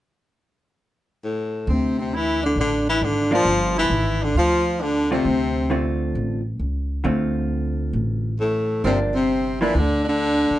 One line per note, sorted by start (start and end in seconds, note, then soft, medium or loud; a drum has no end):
1.24 1.73 A2 medium
1.67 2.53 D2 medium
1.67 1.98 C4 medium
1.72 2.00 C3 medium
1.99 2.18 C3 medium
1.99 2.15 C4 medium
2.14 2.44 E3 medium
2.14 2.42 E4 medium
2.43 2.58 D3 medium
2.43 2.56 D4 medium
2.56 2.98 A1 medium
2.56 2.86 D4 medium
2.60 2.87 D3 medium
2.89 3.05 E3 medium
2.89 3.04 E4 medium
3.01 3.43 G#1 medium
3.01 3.33 D3 medium
3.01 3.32 D4 medium
3.31 3.45 F3 medium
3.31 3.75 F3 loud
3.31 3.45 A#3 medium
3.31 3.45 D4 medium
3.31 3.74 F4 medium
3.45 3.87 G1 medium
3.78 4.26 E3 medium
3.78 4.24 E4 medium
3.90 4.32 G#1 medium
4.22 4.37 D3 medium
4.22 4.37 D4 medium
4.34 5.21 D2 medium
4.34 4.82 F4 loud
4.38 4.84 F3 medium
4.80 5.12 D3 medium
4.80 5.11 D4 medium
5.11 5.98 C3 medium
5.11 5.24 D3 medium
5.11 5.25 A3 medium
5.11 5.97 C4 medium
5.11 5.25 C4 medium
5.11 5.25 F4 medium
5.25 6.11 D2 medium
5.70 6.39 D3 medium
5.70 6.40 A3 medium
5.70 6.40 C4 medium
5.70 6.40 F4 medium
6.15 6.57 A1 medium
6.59 7.02 C#2 medium
7.04 7.91 D2 medium
7.04 8.31 D3 medium
7.04 8.31 A3 medium
7.04 8.31 C4 medium
7.04 8.31 F4 medium
7.93 8.80 A1 medium
8.40 8.82 A2 medium
8.40 8.82 A3 medium
8.84 9.70 G1 medium
8.84 9.00 C3 medium
8.84 9.12 F3 soft
8.84 9.13 A#3 medium
8.84 8.98 C4 medium
8.84 9.13 D4 medium
9.14 9.57 C3 medium
9.14 9.57 C4 medium
9.61 9.80 E3 medium
9.61 9.74 F3 medium
9.61 9.74 A#3 medium
9.61 9.74 D4 medium
9.61 9.77 E4 medium
9.74 10.46 D2 medium
9.74 10.04 D4 medium
9.79 10.07 D3 medium
10.05 10.59 D3 loud
10.05 10.59 D4 medium
10.50 muted upright bass stroke soft